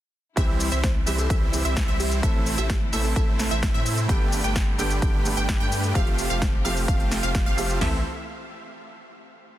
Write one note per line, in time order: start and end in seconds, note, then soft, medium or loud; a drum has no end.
0.36 0.70 C2 loud
0.36 4.05 C3 medium
0.36 1.03 E3 loud
0.36 4.05 E3 medium
0.36 1.04 G3 medium
0.36 2.21 G3 medium
0.36 0.69 G3 medium
0.36 0.69 C4 medium
0.36 1.04 C4 medium
0.36 4.05 E4 medium
0.36 0.69 E4 medium
0.36 1.05 G4 loud
0.36 0.69 C5 medium
0.36 0.69 E5 loud
0.36 kick loud
0.36 closed hi-hat medium
0.36 shaker soft
0.60 open hi-hat loud
0.60 shaker medium
0.72 1.04 C2 loud
0.72 0.86 G3 medium
0.72 0.86 C4 medium
0.72 0.86 E4 medium
0.72 0.79 C5 medium
0.72 0.86 C5 medium
0.72 0.86 E5 medium
0.72 closed hi-hat medium
0.72 shaker soft
0.84 0.91 C5 medium
0.84 kick loud
0.84 snare loud
0.84 closed hi-hat medium
0.84 shaker soft
1.06 1.28 C2 loud
1.06 1.50 E3 loud
1.06 1.50 G3 medium
1.06 1.27 G3 medium
1.06 1.27 C4 medium
1.06 1.51 C4 medium
1.06 1.27 E4 medium
1.06 1.51 G4 loud
1.06 1.27 C5 medium
1.06 1.27 E5 medium
1.06 open hi-hat loud
1.06 shaker medium
1.18 1.39 A4 medium
1.18 closed hi-hat medium
1.18 shaker soft
1.30 1.63 C2 medium
1.30 1.62 G3 medium
1.30 1.62 C4 medium
1.30 1.62 E4 medium
1.30 1.62 C5 medium
1.30 1.62 E5 medium
1.30 kick loud
1.30 closed hi-hat medium
1.30 shaker soft
1.52 2.20 E3 medium
1.52 2.20 G3 medium
1.52 2.21 C4 medium
1.52 2.21 G4 medium
1.52 open hi-hat loud
1.52 shaker medium
1.65 1.86 C2 loud
1.65 1.85 G3 medium
1.65 1.85 C4 medium
1.65 1.85 E4 medium
1.65 1.85 C5 medium
1.65 1.85 E5 loud
1.65 1.85 E5 medium
1.65 closed hi-hat medium
1.65 shaker soft
1.77 kick loud
1.77 snare loud
1.77 closed hi-hat medium
1.77 shaker soft
1.88 2.21 C2 loud
1.88 2.20 G3 loud
1.88 2.20 C4 medium
1.88 2.20 E4 medium
1.88 2.20 C5 medium
1.88 2.20 E5 loud
2.00 2.20 G4 medium
2.00 open hi-hat loud
2.00 shaker medium
2.12 closed hi-hat medium
2.12 shaker soft
2.22 2.56 A1 medium
2.22 2.90 A2 loud
2.22 2.90 E3 medium
2.22 7.77 A3 medium
2.22 2.55 A3 medium
2.22 2.90 A3 medium
2.22 2.55 C4 medium
2.22 2.90 C4 medium
2.22 2.55 E4 medium
2.22 2.91 A4 loud
2.22 2.55 C5 medium
2.22 2.55 E5 loud
2.22 kick loud
2.22 closed hi-hat medium
2.22 shaker soft
2.46 open hi-hat loud
2.46 shaker medium
2.58 2.91 A1 loud
2.58 2.72 A3 medium
2.58 2.72 C4 medium
2.58 2.72 E4 medium
2.58 2.78 G4 medium
2.58 2.72 C5 medium
2.58 2.72 E5 medium
2.58 closed hi-hat medium
2.58 shaker soft
2.70 kick loud
2.70 snare loud
2.70 closed hi-hat medium
2.70 shaker soft
2.92 3.14 A1 loud
2.92 3.36 A2 loud
2.92 3.36 E3 medium
2.92 3.13 A3 medium
2.92 3.37 A3 medium
2.92 3.13 C4 medium
2.92 3.37 C4 medium
2.92 3.13 E4 medium
2.92 3.37 A4 loud
2.92 3.13 C5 medium
2.92 3.13 E5 medium
2.92 open hi-hat loud
2.92 shaker medium
3.04 3.12 A4 medium
3.04 open hi-hat medium
3.04 shaker soft
3.16 3.49 A1 loud
3.16 3.48 A3 medium
3.16 3.48 C4 medium
3.16 3.48 E4 medium
3.16 3.24 A4 medium
3.16 3.48 C5 medium
3.16 3.48 E5 medium
3.16 kick loud
3.16 closed hi-hat medium
3.16 shaker soft
3.38 4.06 A2 medium
3.38 4.06 E3 medium
3.38 4.06 A3 medium
3.38 4.07 C4 medium
3.38 4.07 A4 medium
3.38 snare medium
3.38 open hi-hat loud
3.38 shaker medium
3.51 3.72 A1 loud
3.51 3.71 A3 medium
3.51 3.71 C4 medium
3.51 3.72 E4 medium
3.51 3.72 C5 medium
3.51 3.71 E5 loud
3.51 3.71 E5 medium
3.51 closed hi-hat medium
3.51 shaker soft
3.63 kick loud
3.63 snare loud
3.63 closed hi-hat medium
3.63 shaker soft
3.74 4.07 A2 loud
3.74 4.06 A3 loud
3.74 4.06 C4 medium
3.74 4.06 E4 medium
3.74 4.06 C5 medium
3.74 4.06 E5 loud
3.86 open hi-hat loud
3.86 shaker medium
3.97 closed hi-hat medium
3.97 shaker soft
4.08 4.42 G1 loud
4.08 4.76 G2 loud
4.08 4.76 D3 medium
4.08 5.93 D3 medium
4.08 4.76 A3 medium
4.08 4.41 A3 medium
4.08 5.93 B3 medium
4.08 4.76 B3 medium
4.08 4.41 D4 medium
4.08 7.77 G4 medium
4.08 4.41 G4 medium
4.08 4.77 G4 loud
4.08 4.41 B4 medium
4.08 4.41 G5 loud
4.08 kick loud
4.08 closed hi-hat medium
4.08 shaker soft
4.32 open hi-hat loud
4.32 shaker medium
4.44 4.77 G1 loud
4.44 4.58 A3 medium
4.44 4.58 D4 medium
4.44 4.58 G4 medium
4.44 4.58 B4 medium
4.44 4.58 G5 medium
4.44 closed hi-hat soft
4.44 shaker soft
4.56 kick loud
4.56 snare loud
4.56 closed hi-hat medium
4.56 shaker soft
4.78 5.00 G1 loud
4.78 5.22 G2 loud
4.78 5.22 D3 medium
4.78 5.23 A3 medium
4.78 4.99 A3 medium
4.78 5.23 B3 medium
4.78 4.99 D4 medium
4.78 4.99 G4 medium
4.78 5.23 G4 loud
4.78 4.99 B4 medium
4.78 4.99 G5 medium
4.78 open hi-hat loud
4.78 shaker medium
4.91 closed hi-hat medium
4.91 shaker soft
5.02 5.35 G1 loud
5.02 5.34 A3 medium
5.02 5.34 D4 medium
5.02 5.34 G4 medium
5.02 5.34 B4 medium
5.02 5.34 G5 medium
5.02 kick loud
5.02 closed hi-hat medium
5.02 shaker soft
5.24 5.92 G2 medium
5.24 5.92 D3 medium
5.24 5.92 A3 medium
5.24 5.93 B3 medium
5.24 5.93 G4 medium
5.24 open hi-hat loud
5.24 shaker medium
5.37 5.58 G1 loud
5.37 5.58 A3 medium
5.37 5.58 D4 medium
5.37 5.58 G4 medium
5.37 5.58 B4 medium
5.37 5.58 G5 loud
5.37 closed hi-hat soft
5.37 shaker soft
5.49 kick loud
5.49 snare loud
5.49 closed hi-hat medium
5.49 shaker soft
5.60 5.93 G2 loud
5.60 5.92 A3 medium
5.60 5.92 D4 medium
5.60 5.92 G4 medium
5.60 5.92 B4 medium
5.60 5.92 G5 loud
5.72 open hi-hat loud
5.72 shaker medium
5.84 closed hi-hat medium
5.84 shaker soft
5.94 6.28 F1 loud
5.94 6.62 F3 loud
5.94 7.79 F3 medium
5.94 6.62 A3 medium
5.94 6.27 A3 medium
5.94 7.79 C4 medium
5.94 6.62 C4 medium
5.94 6.27 F4 medium
5.94 6.27 G4 medium
5.94 6.63 G4 loud
5.94 6.27 C5 medium
5.94 6.27 F5 loud
5.94 kick loud
5.94 closed hi-hat medium
5.94 shaker soft
6.07 closed hi-hat soft
6.19 open hi-hat loud
6.19 shaker medium
6.30 6.63 F1 loud
6.30 6.44 A3 medium
6.30 6.44 F4 medium
6.30 6.44 G4 medium
6.30 6.44 C5 medium
6.30 6.44 F5 medium
6.30 closed hi-hat medium
6.30 shaker soft
6.42 kick loud
6.42 snare loud
6.42 closed hi-hat medium
6.42 shaker soft
6.64 6.86 F1 loud
6.64 7.08 F3 loud
6.64 7.09 A3 medium
6.64 6.85 A3 medium
6.64 7.09 C4 medium
6.64 6.85 F4 medium
6.64 6.85 G4 medium
6.64 7.09 G4 loud
6.64 6.85 C5 medium
6.64 6.85 F5 medium
6.64 open hi-hat loud
6.64 shaker medium
6.77 open hi-hat medium
6.77 shaker soft
6.88 7.21 F1 loud
6.88 7.20 A3 medium
6.88 7.20 F4 medium
6.88 7.20 G4 medium
6.88 7.20 C5 medium
6.88 7.20 F5 medium
6.88 kick loud
6.88 closed hi-hat medium
6.88 shaker soft
7.00 closed hi-hat soft
7.11 snare medium
7.11 open hi-hat loud
7.11 shaker medium
7.23 7.44 F1 loud
7.23 7.44 A3 medium
7.23 7.44 F4 medium
7.23 7.44 G4 medium
7.23 7.44 C5 medium
7.23 7.44 F5 loud
7.23 7.44 F5 medium
7.23 closed hi-hat soft
7.23 shaker soft
7.35 kick loud
7.35 snare loud
7.35 closed hi-hat medium
7.35 shaker soft
7.46 7.79 F1 loud
7.46 7.78 A3 medium
7.46 7.78 F4 medium
7.46 7.78 G4 medium
7.46 7.78 C5 medium
7.46 7.78 F5 loud
7.57 7.78 F3 loud
7.57 7.78 A3 medium
7.57 7.79 C4 medium
7.57 7.79 G4 loud
7.57 open hi-hat loud
7.57 shaker medium
7.70 closed hi-hat soft
7.70 shaker soft
7.79 8.03 A1 medium
7.79 7.98 E3 medium
7.79 8.03 E3 medium
7.79 7.98 A3 medium
7.79 7.99 A3 medium
7.79 8.03 A3 medium
7.79 8.03 C4 medium
7.79 7.99 C4 medium
7.79 7.99 E4 medium
7.79 8.03 A4 medium
7.79 8.00 A4 medium
7.79 7.99 C5 medium
7.79 7.99 E5 loud
7.79 snare loud
7.79 floor tom loud
7.79 open hi-hat medium